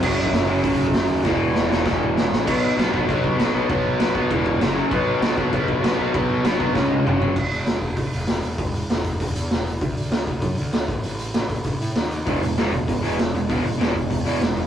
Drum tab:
CC |x---------------|----------------|x---x---x---x---|x---x---x---x---|
HH |----o---o---o---|----------------|----------------|----------------|
SD |----o-------o---|o---o-o-o---o-o-|----o-------o---|----o-------o---|
T1 |----------------|----------------|----------------|----------------|
T2 |----------------|----------------|----------------|----------------|
FT |----------------|----------------|----------------|----------------|
BD |o--o----o--o----|o-------o-------|o-----o-o-o-----|o-----o-o-o-----|

CC |x---x---x---x---|x---x-----------|x---------------|----------------|
HH |----------------|----------------|--o-o-o-o-o-o-o-|o-o-o-o-o-o-o-o-|
SD |----o-------o---|----o---o-------|----o-------o---|----o-------o---|
T1 |----------------|----------o-----|----------------|----------------|
T2 |----------------|------------o---|----------------|----------------|
FT |----------------|--------------o-|----------------|----------------|
BD |o-----o-o-o-----|o-----o-o-------|o-----o-o-------|o-----o-o-------|

CC |----------------|----------------|----------------|----------------|
HH |o-o-o-o-o-o-o-o-|o-o-o-o-o-o-o-o-|o-o-o-o-o-o-o-o-|o-o-o-o-o-o-o-o-|
SD |----o-------o---|----o-------o---|----o-------o---|----o-------o---|
T1 |----------------|----------------|----------------|----------------|
T2 |----------------|----------------|----------------|----------------|
FT |----------------|----------------|----------------|----------------|
BD |o-----o-o-----o-|------o-o-------|o-----o-o-------|o-----o-o-------|